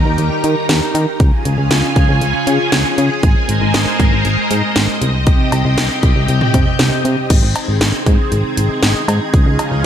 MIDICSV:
0, 0, Header, 1, 4, 480
1, 0, Start_track
1, 0, Tempo, 508475
1, 1134, Time_signature, 4, 2, 24, 8
1, 9307, End_track
2, 0, Start_track
2, 0, Title_t, "String machine"
2, 0, Program_c, 0, 50
2, 0, Note_on_c, 0, 51, 81
2, 0, Note_on_c, 0, 63, 73
2, 0, Note_on_c, 0, 67, 76
2, 0, Note_on_c, 0, 70, 72
2, 0, Note_on_c, 0, 82, 89
2, 1113, Note_off_c, 0, 63, 0
2, 1113, Note_off_c, 0, 67, 0
2, 1113, Note_off_c, 0, 82, 0
2, 1114, Note_off_c, 0, 51, 0
2, 1114, Note_off_c, 0, 70, 0
2, 1134, Note_on_c, 0, 49, 78
2, 1134, Note_on_c, 0, 61, 74
2, 1134, Note_on_c, 0, 65, 73
2, 1135, Note_on_c, 0, 68, 71
2, 1135, Note_on_c, 0, 80, 89
2, 3034, Note_off_c, 0, 65, 0
2, 3035, Note_off_c, 0, 49, 0
2, 3035, Note_off_c, 0, 61, 0
2, 3035, Note_off_c, 0, 80, 0
2, 3050, Note_on_c, 0, 75, 90
2, 3051, Note_on_c, 0, 70, 74
2, 3051, Note_on_c, 0, 72, 71
2, 3052, Note_on_c, 0, 56, 84
2, 4698, Note_off_c, 0, 68, 0
2, 4715, Note_off_c, 0, 70, 0
2, 4716, Note_off_c, 0, 56, 0
2, 4716, Note_off_c, 0, 72, 0
2, 4735, Note_on_c, 0, 48, 82
2, 4735, Note_on_c, 0, 60, 75
2, 4735, Note_on_c, 0, 67, 75
2, 4736, Note_on_c, 0, 79, 91
2, 6854, Note_off_c, 0, 75, 0
2, 6873, Note_off_c, 0, 48, 0
2, 6873, Note_off_c, 0, 60, 0
2, 6873, Note_off_c, 0, 67, 0
2, 6873, Note_off_c, 0, 79, 0
2, 6894, Note_on_c, 0, 63, 74
2, 6895, Note_on_c, 0, 60, 78
2, 6895, Note_on_c, 0, 68, 89
2, 8795, Note_off_c, 0, 60, 0
2, 8816, Note_on_c, 0, 61, 75
2, 8817, Note_on_c, 0, 49, 80
2, 8818, Note_on_c, 0, 65, 74
2, 9307, Note_off_c, 0, 49, 0
2, 9307, Note_off_c, 0, 61, 0
2, 9307, Note_off_c, 0, 63, 0
2, 9307, Note_off_c, 0, 65, 0
2, 9307, Note_off_c, 0, 68, 0
2, 9307, End_track
3, 0, Start_track
3, 0, Title_t, "FM bass"
3, 0, Program_c, 1, 39
3, 53, Note_on_c, 1, 39, 97
3, 161, Note_off_c, 1, 39, 0
3, 174, Note_on_c, 1, 39, 99
3, 282, Note_off_c, 1, 39, 0
3, 415, Note_on_c, 1, 51, 99
3, 523, Note_off_c, 1, 51, 0
3, 654, Note_on_c, 1, 39, 103
3, 762, Note_off_c, 1, 39, 0
3, 893, Note_on_c, 1, 51, 105
3, 1002, Note_off_c, 1, 51, 0
3, 1134, Note_on_c, 1, 37, 108
3, 1242, Note_off_c, 1, 37, 0
3, 1373, Note_on_c, 1, 37, 105
3, 1482, Note_off_c, 1, 37, 0
3, 1492, Note_on_c, 1, 37, 103
3, 1601, Note_off_c, 1, 37, 0
3, 1613, Note_on_c, 1, 37, 103
3, 1722, Note_off_c, 1, 37, 0
3, 1853, Note_on_c, 1, 37, 102
3, 1962, Note_off_c, 1, 37, 0
3, 1974, Note_on_c, 1, 37, 106
3, 2082, Note_off_c, 1, 37, 0
3, 2092, Note_on_c, 1, 37, 101
3, 2201, Note_off_c, 1, 37, 0
3, 2331, Note_on_c, 1, 49, 102
3, 2441, Note_off_c, 1, 49, 0
3, 2572, Note_on_c, 1, 37, 94
3, 2681, Note_off_c, 1, 37, 0
3, 2813, Note_on_c, 1, 49, 102
3, 2922, Note_off_c, 1, 49, 0
3, 3052, Note_on_c, 1, 32, 112
3, 3161, Note_off_c, 1, 32, 0
3, 3293, Note_on_c, 1, 32, 100
3, 3402, Note_off_c, 1, 32, 0
3, 3413, Note_on_c, 1, 32, 103
3, 3522, Note_off_c, 1, 32, 0
3, 3532, Note_on_c, 1, 32, 100
3, 3641, Note_off_c, 1, 32, 0
3, 3772, Note_on_c, 1, 32, 99
3, 3881, Note_off_c, 1, 32, 0
3, 3893, Note_on_c, 1, 32, 95
3, 4002, Note_off_c, 1, 32, 0
3, 4015, Note_on_c, 1, 32, 105
3, 4123, Note_off_c, 1, 32, 0
3, 4255, Note_on_c, 1, 44, 100
3, 4363, Note_off_c, 1, 44, 0
3, 4494, Note_on_c, 1, 32, 98
3, 4602, Note_off_c, 1, 32, 0
3, 4734, Note_on_c, 1, 36, 102
3, 5059, Note_off_c, 1, 36, 0
3, 5215, Note_on_c, 1, 36, 101
3, 5323, Note_off_c, 1, 36, 0
3, 5334, Note_on_c, 1, 36, 95
3, 5442, Note_off_c, 1, 36, 0
3, 5455, Note_on_c, 1, 36, 95
3, 5563, Note_off_c, 1, 36, 0
3, 5693, Note_on_c, 1, 36, 108
3, 5802, Note_off_c, 1, 36, 0
3, 5815, Note_on_c, 1, 36, 98
3, 5923, Note_off_c, 1, 36, 0
3, 5935, Note_on_c, 1, 36, 102
3, 6043, Note_off_c, 1, 36, 0
3, 6176, Note_on_c, 1, 48, 99
3, 6283, Note_off_c, 1, 48, 0
3, 6413, Note_on_c, 1, 36, 108
3, 6522, Note_off_c, 1, 36, 0
3, 6653, Note_on_c, 1, 48, 106
3, 6762, Note_off_c, 1, 48, 0
3, 6894, Note_on_c, 1, 32, 106
3, 7002, Note_off_c, 1, 32, 0
3, 7013, Note_on_c, 1, 32, 95
3, 7121, Note_off_c, 1, 32, 0
3, 7253, Note_on_c, 1, 32, 96
3, 7362, Note_off_c, 1, 32, 0
3, 7373, Note_on_c, 1, 32, 111
3, 7481, Note_off_c, 1, 32, 0
3, 7613, Note_on_c, 1, 44, 102
3, 7722, Note_off_c, 1, 44, 0
3, 7853, Note_on_c, 1, 32, 106
3, 7962, Note_off_c, 1, 32, 0
3, 8094, Note_on_c, 1, 32, 104
3, 8202, Note_off_c, 1, 32, 0
3, 8333, Note_on_c, 1, 32, 98
3, 8442, Note_off_c, 1, 32, 0
3, 8573, Note_on_c, 1, 44, 101
3, 8681, Note_off_c, 1, 44, 0
3, 8814, Note_on_c, 1, 37, 108
3, 8922, Note_off_c, 1, 37, 0
3, 8933, Note_on_c, 1, 37, 101
3, 9042, Note_off_c, 1, 37, 0
3, 9173, Note_on_c, 1, 37, 98
3, 9281, Note_off_c, 1, 37, 0
3, 9307, End_track
4, 0, Start_track
4, 0, Title_t, "Drums"
4, 172, Note_on_c, 9, 42, 62
4, 266, Note_off_c, 9, 42, 0
4, 414, Note_on_c, 9, 42, 87
4, 508, Note_off_c, 9, 42, 0
4, 653, Note_on_c, 9, 38, 108
4, 655, Note_on_c, 9, 42, 71
4, 747, Note_off_c, 9, 38, 0
4, 750, Note_off_c, 9, 42, 0
4, 896, Note_on_c, 9, 42, 72
4, 991, Note_off_c, 9, 42, 0
4, 1132, Note_on_c, 9, 42, 69
4, 1134, Note_on_c, 9, 36, 116
4, 1227, Note_off_c, 9, 42, 0
4, 1228, Note_off_c, 9, 36, 0
4, 1373, Note_on_c, 9, 42, 83
4, 1467, Note_off_c, 9, 42, 0
4, 1612, Note_on_c, 9, 38, 117
4, 1612, Note_on_c, 9, 42, 76
4, 1706, Note_off_c, 9, 42, 0
4, 1707, Note_off_c, 9, 38, 0
4, 1851, Note_on_c, 9, 42, 58
4, 1853, Note_on_c, 9, 36, 86
4, 1946, Note_off_c, 9, 42, 0
4, 1947, Note_off_c, 9, 36, 0
4, 2090, Note_on_c, 9, 42, 66
4, 2185, Note_off_c, 9, 42, 0
4, 2333, Note_on_c, 9, 42, 86
4, 2427, Note_off_c, 9, 42, 0
4, 2570, Note_on_c, 9, 38, 108
4, 2572, Note_on_c, 9, 42, 68
4, 2664, Note_off_c, 9, 38, 0
4, 2667, Note_off_c, 9, 42, 0
4, 2813, Note_on_c, 9, 42, 73
4, 2908, Note_off_c, 9, 42, 0
4, 3050, Note_on_c, 9, 42, 70
4, 3052, Note_on_c, 9, 36, 115
4, 3145, Note_off_c, 9, 42, 0
4, 3147, Note_off_c, 9, 36, 0
4, 3293, Note_on_c, 9, 42, 83
4, 3387, Note_off_c, 9, 42, 0
4, 3532, Note_on_c, 9, 42, 79
4, 3533, Note_on_c, 9, 38, 117
4, 3626, Note_off_c, 9, 42, 0
4, 3627, Note_off_c, 9, 38, 0
4, 3772, Note_on_c, 9, 42, 59
4, 3773, Note_on_c, 9, 36, 90
4, 3867, Note_off_c, 9, 36, 0
4, 3867, Note_off_c, 9, 42, 0
4, 4010, Note_on_c, 9, 42, 63
4, 4105, Note_off_c, 9, 42, 0
4, 4254, Note_on_c, 9, 42, 86
4, 4348, Note_off_c, 9, 42, 0
4, 4491, Note_on_c, 9, 38, 108
4, 4494, Note_on_c, 9, 42, 71
4, 4586, Note_off_c, 9, 38, 0
4, 4588, Note_off_c, 9, 42, 0
4, 4735, Note_on_c, 9, 42, 72
4, 4829, Note_off_c, 9, 42, 0
4, 4971, Note_on_c, 9, 42, 73
4, 4973, Note_on_c, 9, 36, 118
4, 5065, Note_off_c, 9, 42, 0
4, 5068, Note_off_c, 9, 36, 0
4, 5213, Note_on_c, 9, 42, 83
4, 5213, Note_on_c, 9, 56, 67
4, 5307, Note_off_c, 9, 42, 0
4, 5307, Note_off_c, 9, 56, 0
4, 5452, Note_on_c, 9, 42, 78
4, 5453, Note_on_c, 9, 38, 123
4, 5546, Note_off_c, 9, 42, 0
4, 5547, Note_off_c, 9, 38, 0
4, 5692, Note_on_c, 9, 42, 60
4, 5693, Note_on_c, 9, 36, 86
4, 5786, Note_off_c, 9, 42, 0
4, 5788, Note_off_c, 9, 36, 0
4, 5932, Note_on_c, 9, 42, 64
4, 6027, Note_off_c, 9, 42, 0
4, 6053, Note_on_c, 9, 47, 87
4, 6147, Note_off_c, 9, 47, 0
4, 6173, Note_on_c, 9, 45, 94
4, 6174, Note_on_c, 9, 42, 89
4, 6176, Note_on_c, 9, 36, 90
4, 6268, Note_off_c, 9, 42, 0
4, 6268, Note_off_c, 9, 45, 0
4, 6270, Note_off_c, 9, 36, 0
4, 6412, Note_on_c, 9, 38, 112
4, 6414, Note_on_c, 9, 42, 73
4, 6506, Note_off_c, 9, 38, 0
4, 6509, Note_off_c, 9, 42, 0
4, 6656, Note_on_c, 9, 42, 76
4, 6751, Note_off_c, 9, 42, 0
4, 6892, Note_on_c, 9, 42, 72
4, 6892, Note_on_c, 9, 49, 103
4, 6894, Note_on_c, 9, 36, 121
4, 6987, Note_off_c, 9, 42, 0
4, 6987, Note_off_c, 9, 49, 0
4, 6988, Note_off_c, 9, 36, 0
4, 7133, Note_on_c, 9, 42, 84
4, 7133, Note_on_c, 9, 56, 66
4, 7227, Note_off_c, 9, 42, 0
4, 7227, Note_off_c, 9, 56, 0
4, 7372, Note_on_c, 9, 42, 81
4, 7373, Note_on_c, 9, 38, 120
4, 7466, Note_off_c, 9, 42, 0
4, 7467, Note_off_c, 9, 38, 0
4, 7613, Note_on_c, 9, 36, 90
4, 7613, Note_on_c, 9, 42, 62
4, 7708, Note_off_c, 9, 36, 0
4, 7708, Note_off_c, 9, 42, 0
4, 7853, Note_on_c, 9, 42, 66
4, 7947, Note_off_c, 9, 42, 0
4, 8094, Note_on_c, 9, 42, 88
4, 8189, Note_off_c, 9, 42, 0
4, 8332, Note_on_c, 9, 38, 105
4, 8334, Note_on_c, 9, 42, 73
4, 8426, Note_off_c, 9, 38, 0
4, 8428, Note_off_c, 9, 42, 0
4, 8575, Note_on_c, 9, 56, 73
4, 8577, Note_on_c, 9, 42, 76
4, 8669, Note_off_c, 9, 56, 0
4, 8671, Note_off_c, 9, 42, 0
4, 8813, Note_on_c, 9, 42, 71
4, 8814, Note_on_c, 9, 36, 119
4, 8908, Note_off_c, 9, 36, 0
4, 8908, Note_off_c, 9, 42, 0
4, 9054, Note_on_c, 9, 42, 84
4, 9054, Note_on_c, 9, 56, 65
4, 9148, Note_off_c, 9, 42, 0
4, 9149, Note_off_c, 9, 56, 0
4, 9307, End_track
0, 0, End_of_file